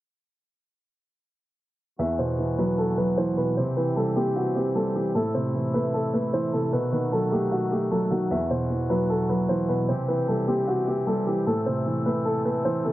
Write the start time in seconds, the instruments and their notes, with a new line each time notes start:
1.99 felt piano E2, accordion B2 E3 F#4, grand piano E5
2.19 felt piano B2, grand piano C5
2.39 felt piano E3
2.58 felt piano F#3, grand piano B4
2.78 grand piano A4
2.98 felt piano F#3, grand piano B4
3.18 felt piano E3, grand piano C5
3.37 felt piano B2, grand piano B4
3.57 felt piano C3, accordion E3 C4 G4, grand piano C5
3.77 felt piano E3, grand piano B4
3.96 felt piano G3, grand piano A4
4.16 felt piano C4, grand piano G4
4.36 grand piano F#4
4.56 felt piano C4, grand piano G4
4.75 felt piano G3, grand piano A4
4.95 felt piano E3, grand piano G4
5.15 felt piano A2, accordion C3 A3 E4, grand piano A4
5.34 felt piano C3, grand piano C5
5.54 felt piano E3
5.74 felt piano A3, grand piano B4
5.94 grand piano A4
6.14 felt piano A3, grand piano B4
6.33 felt piano E3, grand piano C5
6.53 felt piano C3, grand piano A4
6.73 felt piano B2, accordion D#3 F#4, grand piano B4
6.92 felt piano D#3, grand piano B4
7.12 felt piano F#3, grand piano A4
7.32 felt piano A3, grand piano G4
7.52 grand piano F#4
7.71 felt piano A3, grand piano G4
7.91 felt piano F#3, grand piano A4
8.11 felt piano D#3, grand piano F#4
8.31 felt piano E2, accordion E3, grand piano E5
8.50 felt piano B2, grand piano C5
8.70 felt piano E3
8.90 felt piano F#3, grand piano B4
9.10 grand piano A4
9.29 felt piano F#3, grand piano B4
9.49 felt piano E3, grand piano C5
9.69 felt piano B2, grand piano B4
9.89 felt piano C3, accordion C4 G4, grand piano C5
10.08 felt piano E3, grand piano B4
10.28 felt piano G3, grand piano A4
10.48 felt piano C4, grand piano G4
10.68 grand piano F#4
10.87 felt piano C4, grand piano G4
11.07 felt piano G3, grand piano A4
11.27 felt piano E3, grand piano G4
11.46 felt piano A2, accordion A3 A4, grand piano A4
11.66 felt piano C3, grand piano C5
11.86 felt piano E3
12.06 felt piano A3, grand piano B4
12.25 grand piano A4
12.45 felt piano A3, grand piano B4
12.65 felt piano E3, grand piano C5
12.85 felt piano C3, grand piano A4